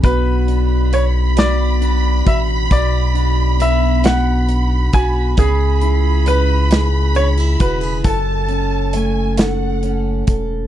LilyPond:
<<
  \new Staff \with { instrumentName = "Violin section" } { \time 6/8 \key b \dorian \tempo 4. = 45 b''2.~ | b''2. | b''2. | a''4 gis''8 fis''4 r8 | }
  \new Staff \with { instrumentName = "Grand piano" } { \time 6/8 \key b \dorian b'4 cis''8 d''4 e''8 | d''4 e''8 fis''4 gis''8 | gis'4 b'4 cis''8 b'8 | a'2 r4 | }
  \new Staff \with { instrumentName = "Steel-string acoustic guitar" } { \time 6/8 \key b \dorian <b, fis'>8 d'8 b8 fis'8 d'8 fis'8 | <b, fis'>8 d'8 b8 fis'8 d'8 fis'8 | <cis gis'>8 e'8 cis'8 gis'8 d'16 e'16 fis'16 gis'16 | <fis, a'>8 cis'8 a8 a'8 cis'8 a'8 | }
  \new Staff \with { instrumentName = "Analog synth bass" } { \clef bass \time 6/8 \key b \dorian b,,2~ b,,8 a,,8 | b,,2~ b,,8 b,,8 | cis,2~ cis,8 e,,8 | fis,,2~ fis,,8 e,,8 | }
  \new DrumStaff \with { instrumentName = "Drums" } \drummode { \time 6/8 <hh bd>8 hh8 hh8 <hh sn>8 hh8 <hh bd>8 | <hh bd>8 hh8 hh8 <hh sn>8 hh8 <hh bd>8 | <hh bd>8 hh8 hh8 <hh sn>8 hh8 <hh bd>8 | <hh bd>8 hh8 hh8 <hh sn>8 hh8 <hh bd>8 | }
>>